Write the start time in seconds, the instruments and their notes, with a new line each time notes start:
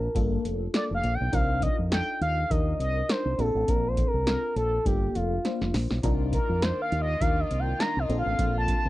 Already playing: analog synth lead A#4
0.15 fingered electric bass G1, fm electric piano A#3 D4 F4 A4, kick, closed hi-hat
0.45 fingered electric bass F1, closed hi-hat
0.74 fm electric piano A#3 D4 F4 A4, analog synth lead D5, snare, clap, closed hi-hat
0.91 fingered electric bass F1, analog synth lead F5
1.04 fingered electric bass A#1, closed hi-hat
1.14 analog synth lead G5
1.21 fingered electric bass B1
1.32 fingered electric bass C2, fm electric piano D4 D#4 F4 A#4, analog synth lead F5, kick, closed hi-hat
1.62 analog synth lead D#5, kick, closed hi-hat
1.79 fingered electric bass F2
1.91 fm electric piano D4 D#4 F4 A4, analog synth lead G5, snare, clap, closed hi-hat
2.21 fingered electric bass D#2, analog synth lead F5, closed hi-hat
2.50 fingered electric bass D#2, fm electric piano D4 D#4 F4 A#4, analog synth lead D#5, kick, closed hi-hat
2.79 fingered electric bass C2, analog synth lead D#5, closed hi-hat
3.09 fm electric piano D4 D#4 F4 A#4, analog synth lead C5, snare, clap, closed hi-hat
3.25 fingered electric bass C2
3.38 fingered electric bass A#1, fm electric piano C4 D4 F4 G#4, analog synth lead A4, closed hi-hat
3.46 fm electric piano A4
3.55 fingered electric bass A1
3.68 fingered electric bass A#1, analog synth lead A#4, kick, closed hi-hat
3.88 analog synth lead C5
3.97 kick, closed hi-hat
4.07 analog synth lead A#4
4.14 fingered electric bass C2
4.26 fm electric piano C4 D4 F4 A4, analog synth lead A#4, snare, clap, closed hi-hat
4.56 fingered electric bass A#1, analog synth lead A4, closed hi-hat
4.85 fingered electric bass G1, fm electric piano A#3 D4 F4 A4, analog synth lead G4, kick, closed hi-hat
5.15 fingered electric bass F1, analog synth lead F4, closed hi-hat
5.45 fm electric piano A#3 D4 F4 C5, snare, closed hi-hat
5.61 fingered electric bass F1, snare
5.74 fingered electric bass A#1, snare, open hi-hat
5.91 fingered electric bass B1, snare
6.03 fingered electric bass C2, string section D#3 A#3 F4 D5, fm electric piano D4 D#4 F4 A#4, kick, closed hi-hat
6.33 analog synth lead A#4, kick, closed hi-hat
6.49 fingered electric bass F2
6.62 fm electric piano D4 D#4 F4 A#4, analog synth lead C5, snare, clap, closed hi-hat
6.82 analog synth lead F5
6.92 fingered electric bass D#2, closed hi-hat
7.02 analog synth lead D#5
7.21 fingered electric bass D#2, fm electric piano D4 D#4 F4 A#4, analog synth lead F5, kick, closed hi-hat
7.40 analog synth lead D#5
7.51 fingered electric bass C2, closed hi-hat
7.59 analog synth lead G5
7.79 fm electric piano D4 D#4 F4 A#4, analog synth lead A#5, snare, clap, closed hi-hat
7.97 fingered electric bass C2, analog synth lead D#5
8.09 fingered electric bass A#1, string section D3 A4, fm electric piano C4 D4 F4 A4, closed hi-hat
8.18 analog synth lead F5
8.26 fingered electric bass A1
8.39 fingered electric bass A#1, kick, closed hi-hat
8.58 analog synth lead A5
8.68 kick, closed hi-hat
8.77 analog synth lead A5
8.85 fingered electric bass C2